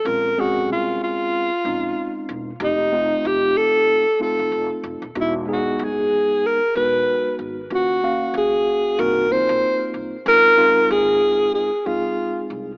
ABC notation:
X:1
M:4/4
L:1/16
Q:"Swing 16ths" 1/4=94
K:Db
V:1 name="Alto saxophone"
B2 G2 F2 F8 z2 | E4 =G2 =A4 A4 z2 | =E2 ^F2 ^G4 B2 =B4 z2 | G4 A4 B2 c4 z2 |
B4 A4 A2 F4 z2 |]
V:2 name="Tine electric piano"
[A,CDF]2 [A,CDA]6 z2 [A,CDE]6 | [=A,CE=G]2 [A,CEF]6 z2 [A,CEF]6 | [^G,=B,^D^F]2 [G,B,D^G]6 z2 [G,B,DF]6 | [B,DFG]2 [B,DGf]6 [B,CEG]2 [B,CEF]6 |
[A,CEF]2 [A,CEF]6 z2 [A,CEA]6 |]
V:3 name="Upright bass" clef=bass
B,,,4 C,,2 z4 B,,,2 z2 _F,,,2 | F,,,4 F,,,2 z4 z F,,, F,,, z F,,, E,,, | =E,,,4 ^F,,,2 z4 E,,,2 z2 ^G,,,2 | E,,4 E,,2 z2 C,,3 B,,, z2 C,, z |
D,,4 E,,2 z4 D,,2 z2 C,,2 |]